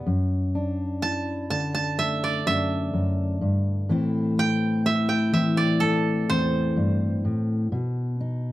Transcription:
0, 0, Header, 1, 3, 480
1, 0, Start_track
1, 0, Tempo, 956785
1, 30, Time_signature, 4, 2, 24, 8
1, 4275, End_track
2, 0, Start_track
2, 0, Title_t, "Koto"
2, 0, Program_c, 0, 107
2, 0, Note_on_c, 0, 76, 83
2, 57, Note_off_c, 0, 76, 0
2, 514, Note_on_c, 0, 81, 90
2, 753, Note_off_c, 0, 81, 0
2, 755, Note_on_c, 0, 81, 72
2, 874, Note_off_c, 0, 81, 0
2, 876, Note_on_c, 0, 81, 77
2, 997, Note_on_c, 0, 76, 84
2, 1122, Note_on_c, 0, 74, 72
2, 1237, Note_off_c, 0, 76, 0
2, 1239, Note_on_c, 0, 76, 95
2, 1506, Note_off_c, 0, 81, 0
2, 1925, Note_off_c, 0, 74, 0
2, 1988, Note_off_c, 0, 76, 0
2, 2203, Note_on_c, 0, 79, 94
2, 2438, Note_on_c, 0, 76, 77
2, 2550, Note_off_c, 0, 79, 0
2, 2552, Note_on_c, 0, 79, 76
2, 2675, Note_off_c, 0, 76, 0
2, 2677, Note_on_c, 0, 76, 73
2, 2796, Note_on_c, 0, 74, 75
2, 2911, Note_on_c, 0, 69, 81
2, 3158, Note_on_c, 0, 72, 96
2, 3228, Note_off_c, 0, 79, 0
2, 3426, Note_off_c, 0, 76, 0
2, 3599, Note_off_c, 0, 74, 0
2, 3865, Note_off_c, 0, 69, 0
2, 4019, Note_off_c, 0, 72, 0
2, 4275, End_track
3, 0, Start_track
3, 0, Title_t, "Steel-string acoustic guitar"
3, 0, Program_c, 1, 25
3, 32, Note_on_c, 1, 42, 70
3, 276, Note_on_c, 1, 62, 56
3, 514, Note_on_c, 1, 64, 63
3, 753, Note_off_c, 1, 62, 0
3, 756, Note_on_c, 1, 50, 62
3, 760, Note_on_c, 1, 62, 56
3, 1000, Note_on_c, 1, 57, 56
3, 1227, Note_off_c, 1, 42, 0
3, 1232, Note_off_c, 1, 62, 0
3, 1233, Note_on_c, 1, 42, 61
3, 1238, Note_on_c, 1, 62, 53
3, 1466, Note_off_c, 1, 42, 0
3, 1472, Note_on_c, 1, 42, 61
3, 1710, Note_off_c, 1, 42, 0
3, 1712, Note_on_c, 1, 43, 60
3, 1925, Note_off_c, 1, 62, 0
3, 1926, Note_off_c, 1, 57, 0
3, 1951, Note_off_c, 1, 43, 0
3, 1952, Note_off_c, 1, 64, 0
3, 1953, Note_off_c, 1, 50, 0
3, 1953, Note_on_c, 1, 45, 74
3, 1955, Note_on_c, 1, 52, 61
3, 1959, Note_on_c, 1, 57, 58
3, 1962, Note_on_c, 1, 60, 60
3, 1966, Note_on_c, 1, 64, 65
3, 2189, Note_off_c, 1, 60, 0
3, 2195, Note_on_c, 1, 60, 57
3, 2432, Note_off_c, 1, 64, 0
3, 2438, Note_on_c, 1, 64, 61
3, 2667, Note_off_c, 1, 52, 0
3, 2671, Note_off_c, 1, 60, 0
3, 2673, Note_on_c, 1, 52, 63
3, 2677, Note_on_c, 1, 60, 60
3, 2912, Note_off_c, 1, 57, 0
3, 2918, Note_on_c, 1, 57, 58
3, 3154, Note_off_c, 1, 60, 0
3, 3158, Note_on_c, 1, 40, 58
3, 3161, Note_on_c, 1, 60, 58
3, 3392, Note_off_c, 1, 40, 0
3, 3394, Note_on_c, 1, 43, 61
3, 3630, Note_off_c, 1, 45, 0
3, 3633, Note_off_c, 1, 43, 0
3, 3636, Note_on_c, 1, 45, 59
3, 3843, Note_off_c, 1, 52, 0
3, 3845, Note_off_c, 1, 57, 0
3, 3847, Note_off_c, 1, 60, 0
3, 3871, Note_off_c, 1, 45, 0
3, 3873, Note_on_c, 1, 47, 74
3, 3874, Note_off_c, 1, 64, 0
3, 4117, Note_on_c, 1, 63, 56
3, 4275, Note_off_c, 1, 47, 0
3, 4275, Note_off_c, 1, 63, 0
3, 4275, End_track
0, 0, End_of_file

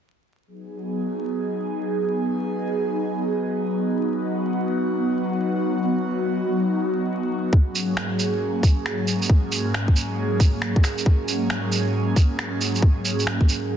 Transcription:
0, 0, Header, 1, 3, 480
1, 0, Start_track
1, 0, Key_signature, 5, "minor"
1, 0, Tempo, 441176
1, 514, Time_signature, 4, 2, 24, 8
1, 14979, End_track
2, 0, Start_track
2, 0, Title_t, "Analog synth pad"
2, 0, Program_c, 0, 89
2, 508, Note_on_c, 0, 59, 71
2, 509, Note_on_c, 0, 54, 76
2, 509, Note_on_c, 0, 68, 86
2, 512, Note_on_c, 0, 63, 69
2, 4313, Note_off_c, 0, 68, 0
2, 4343, Note_on_c, 0, 66, 89
2, 8147, Note_off_c, 0, 59, 0
2, 8149, Note_off_c, 0, 63, 0
2, 8150, Note_off_c, 0, 66, 0
2, 8181, Note_on_c, 0, 44, 79
2, 8182, Note_on_c, 0, 61, 74
2, 8187, Note_on_c, 0, 58, 71
2, 8187, Note_on_c, 0, 68, 86
2, 14979, Note_off_c, 0, 44, 0
2, 14979, Note_off_c, 0, 54, 0
2, 14979, Note_off_c, 0, 58, 0
2, 14979, Note_off_c, 0, 61, 0
2, 14979, Note_off_c, 0, 68, 0
2, 14979, End_track
3, 0, Start_track
3, 0, Title_t, "Drums"
3, 8190, Note_on_c, 9, 36, 105
3, 8299, Note_off_c, 9, 36, 0
3, 8438, Note_on_c, 9, 82, 49
3, 8546, Note_off_c, 9, 82, 0
3, 8669, Note_on_c, 9, 26, 95
3, 8778, Note_off_c, 9, 26, 0
3, 8915, Note_on_c, 9, 82, 50
3, 9024, Note_off_c, 9, 82, 0
3, 9392, Note_on_c, 9, 36, 94
3, 9399, Note_on_c, 9, 82, 51
3, 9500, Note_off_c, 9, 36, 0
3, 9508, Note_off_c, 9, 82, 0
3, 9638, Note_on_c, 9, 26, 94
3, 9746, Note_off_c, 9, 26, 0
3, 9877, Note_on_c, 9, 82, 49
3, 9985, Note_off_c, 9, 82, 0
3, 10034, Note_on_c, 9, 82, 27
3, 10113, Note_on_c, 9, 36, 100
3, 10143, Note_off_c, 9, 82, 0
3, 10222, Note_off_c, 9, 36, 0
3, 10358, Note_on_c, 9, 82, 50
3, 10467, Note_off_c, 9, 82, 0
3, 10600, Note_on_c, 9, 26, 96
3, 10709, Note_off_c, 9, 26, 0
3, 10749, Note_on_c, 9, 36, 52
3, 10836, Note_on_c, 9, 82, 49
3, 10858, Note_off_c, 9, 36, 0
3, 10945, Note_off_c, 9, 82, 0
3, 11315, Note_on_c, 9, 36, 90
3, 11321, Note_on_c, 9, 82, 49
3, 11424, Note_off_c, 9, 36, 0
3, 11430, Note_off_c, 9, 82, 0
3, 11552, Note_on_c, 9, 26, 96
3, 11661, Note_off_c, 9, 26, 0
3, 11709, Note_on_c, 9, 36, 92
3, 11792, Note_on_c, 9, 26, 55
3, 11792, Note_on_c, 9, 82, 51
3, 11818, Note_off_c, 9, 36, 0
3, 11901, Note_off_c, 9, 26, 0
3, 11901, Note_off_c, 9, 82, 0
3, 11948, Note_on_c, 9, 82, 27
3, 12034, Note_on_c, 9, 36, 98
3, 12057, Note_off_c, 9, 82, 0
3, 12143, Note_off_c, 9, 36, 0
3, 12276, Note_on_c, 9, 82, 50
3, 12385, Note_off_c, 9, 82, 0
3, 12511, Note_on_c, 9, 26, 96
3, 12619, Note_off_c, 9, 26, 0
3, 12753, Note_on_c, 9, 82, 50
3, 12862, Note_off_c, 9, 82, 0
3, 13234, Note_on_c, 9, 36, 92
3, 13238, Note_on_c, 9, 82, 51
3, 13343, Note_off_c, 9, 36, 0
3, 13347, Note_off_c, 9, 82, 0
3, 13479, Note_on_c, 9, 26, 95
3, 13587, Note_off_c, 9, 26, 0
3, 13724, Note_on_c, 9, 82, 52
3, 13833, Note_off_c, 9, 82, 0
3, 13875, Note_on_c, 9, 82, 28
3, 13953, Note_on_c, 9, 36, 101
3, 13984, Note_off_c, 9, 82, 0
3, 14062, Note_off_c, 9, 36, 0
3, 14200, Note_on_c, 9, 82, 52
3, 14308, Note_off_c, 9, 82, 0
3, 14355, Note_on_c, 9, 82, 29
3, 14436, Note_on_c, 9, 26, 99
3, 14464, Note_off_c, 9, 82, 0
3, 14545, Note_off_c, 9, 26, 0
3, 14586, Note_on_c, 9, 36, 56
3, 14676, Note_on_c, 9, 82, 53
3, 14695, Note_off_c, 9, 36, 0
3, 14785, Note_off_c, 9, 82, 0
3, 14979, End_track
0, 0, End_of_file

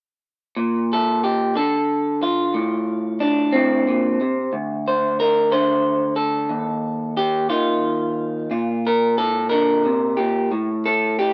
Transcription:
0, 0, Header, 1, 2, 480
1, 0, Start_track
1, 0, Tempo, 660793
1, 405, Time_signature, 6, 3, 24, 8
1, 4722, Tempo, 666667
1, 8201, End_track
2, 0, Start_track
2, 0, Title_t, "Clean electric guitar"
2, 0, Program_c, 0, 27
2, 410, Note_on_c, 0, 46, 59
2, 676, Note_on_c, 0, 69, 75
2, 896, Note_off_c, 0, 69, 0
2, 899, Note_on_c, 0, 67, 73
2, 1130, Note_off_c, 0, 46, 0
2, 1130, Note_on_c, 0, 50, 52
2, 1133, Note_off_c, 0, 67, 0
2, 1138, Note_on_c, 0, 69, 75
2, 1613, Note_off_c, 0, 69, 0
2, 1617, Note_on_c, 0, 65, 69
2, 1846, Note_on_c, 0, 45, 62
2, 1851, Note_off_c, 0, 50, 0
2, 2327, Note_on_c, 0, 62, 78
2, 2561, Note_on_c, 0, 60, 78
2, 2565, Note_off_c, 0, 45, 0
2, 2574, Note_on_c, 0, 45, 55
2, 2578, Note_off_c, 0, 65, 0
2, 2814, Note_off_c, 0, 45, 0
2, 2817, Note_on_c, 0, 46, 54
2, 3050, Note_off_c, 0, 62, 0
2, 3054, Note_off_c, 0, 46, 0
2, 3057, Note_on_c, 0, 48, 52
2, 3285, Note_off_c, 0, 60, 0
2, 3288, Note_on_c, 0, 38, 62
2, 3294, Note_off_c, 0, 48, 0
2, 3542, Note_on_c, 0, 72, 74
2, 3773, Note_off_c, 0, 72, 0
2, 3776, Note_on_c, 0, 70, 79
2, 4007, Note_on_c, 0, 50, 60
2, 4008, Note_off_c, 0, 70, 0
2, 4011, Note_on_c, 0, 72, 66
2, 4473, Note_off_c, 0, 72, 0
2, 4475, Note_on_c, 0, 69, 72
2, 4714, Note_off_c, 0, 38, 0
2, 4717, Note_on_c, 0, 39, 56
2, 4723, Note_off_c, 0, 50, 0
2, 5198, Note_off_c, 0, 69, 0
2, 5205, Note_on_c, 0, 67, 80
2, 5436, Note_off_c, 0, 67, 0
2, 5439, Note_on_c, 0, 65, 73
2, 5443, Note_on_c, 0, 51, 53
2, 6143, Note_off_c, 0, 39, 0
2, 6145, Note_off_c, 0, 51, 0
2, 6162, Note_off_c, 0, 65, 0
2, 6167, Note_on_c, 0, 46, 59
2, 6171, Note_on_c, 0, 65, 37
2, 6425, Note_on_c, 0, 70, 82
2, 6648, Note_off_c, 0, 70, 0
2, 6651, Note_on_c, 0, 69, 80
2, 6875, Note_off_c, 0, 69, 0
2, 6878, Note_on_c, 0, 70, 80
2, 6891, Note_on_c, 0, 50, 55
2, 7133, Note_off_c, 0, 50, 0
2, 7136, Note_on_c, 0, 48, 50
2, 7361, Note_off_c, 0, 65, 0
2, 7363, Note_on_c, 0, 67, 62
2, 7370, Note_off_c, 0, 46, 0
2, 7374, Note_off_c, 0, 48, 0
2, 7379, Note_on_c, 0, 46, 50
2, 7603, Note_off_c, 0, 70, 0
2, 7608, Note_off_c, 0, 67, 0
2, 7611, Note_off_c, 0, 46, 0
2, 7614, Note_on_c, 0, 45, 62
2, 7857, Note_on_c, 0, 69, 81
2, 8090, Note_off_c, 0, 69, 0
2, 8097, Note_on_c, 0, 67, 82
2, 8201, Note_off_c, 0, 45, 0
2, 8201, Note_off_c, 0, 67, 0
2, 8201, End_track
0, 0, End_of_file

